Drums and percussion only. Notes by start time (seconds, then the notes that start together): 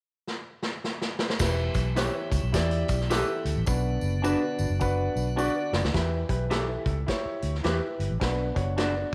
0.27 snare
0.63 snare
0.84 snare
1.02 snare
1.19 snare
1.30 snare
1.39 kick, snare, crash, tambourine
1.74 kick, closed hi-hat, tambourine
1.96 snare, closed hi-hat, tambourine
2.32 kick, closed hi-hat, tambourine
2.54 kick, snare, closed hi-hat, tambourine
2.71 closed hi-hat
2.88 kick, closed hi-hat, tambourine
3.01 snare
3.10 snare, closed hi-hat, tambourine
3.45 closed hi-hat, tambourine
3.67 kick, tambourine
4.01 tambourine
4.24 tambourine
4.59 tambourine
4.81 kick, tambourine
5.17 tambourine
5.38 tambourine
5.73 snare, tambourine
5.85 snare
5.94 kick, snare, closed hi-hat
6.29 kick, closed hi-hat
6.51 snare, closed hi-hat
6.86 kick, closed hi-hat
7.08 kick, snare, closed hi-hat
7.42 closed hi-hat
7.55 snare
7.64 snare, closed hi-hat
8.00 closed hi-hat
8.21 kick, snare, closed hi-hat
8.56 kick, closed hi-hat
8.78 snare, closed hi-hat